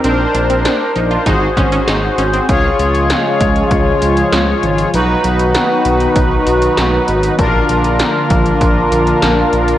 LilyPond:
<<
  \new Staff \with { instrumentName = "Analog polysynth" } { \time 4/4 \key aes \lydian \tempo 4 = 98 <d' bes' c''>2 <ges' aes' c''>2 | \key des \lydian <f' aes' des''>1 | <dis' fis' b'>1 | <d' f' bes'>1 | }
  \new Staff \with { instrumentName = "Synth pluck" } { \time 4/4 \key aes \lydian c'8 d'16 c'16 d'8 ees'16 f'16 ees'8 des'16 des'16 ees'8 des'16 c'16 | \key des \lydian r1 | r1 | r1 | }
  \new Staff \with { instrumentName = "Analog synth pad" } { \clef bass \time 4/4 \key aes \lydian r1 | \key des \lydian <des f aes f'>1 | <dis fis b fis'>1 | <d f bes f'>1 | }
  \new Staff \with { instrumentName = "Analog synth bass" } { \clef bass \time 4/4 \key aes \lydian bes,,8 bes,,8. r16 bes,,8 aes,,8 aes,,8 aes,,8 aes,,8 | \key des \lydian des,8 des,8. r16 des,8 des,8 des,8 des,8 aes,,8 | b,,8 b,,8. r16 b,,8 b,,8 b,,8 b,,8 aes,,8 | bes,,8 bes,,8. r16 bes,,8 bes,,8 bes,,8 bes,,8 bes,,8 | }
  \new DrumStaff \with { instrumentName = "Drums" } \drummode { \time 4/4 hh8 hh16 hh16 <hh sn>8 hh16 hh16 <hh bd>8 <hh bd>16 hh16 <hh sn>8 hh16 hh16 | <hh bd>8 hh16 hh16 <hh sn>8 <hh bd>16 hh16 <hh bd>8 hh16 hh16 <hh sn>8 hh16 hh16 | hh8 hh16 hh16 <hh sn>8 hh16 hh16 <hh bd>8 hh16 hh16 <hh sn>8 hh16 hh16 | <hh bd>8 hh16 hh16 <hh sn>8 <hh bd>16 hh16 <hh bd>8 hh16 hh16 <hh sn>8 hh16 hh16 | }
>>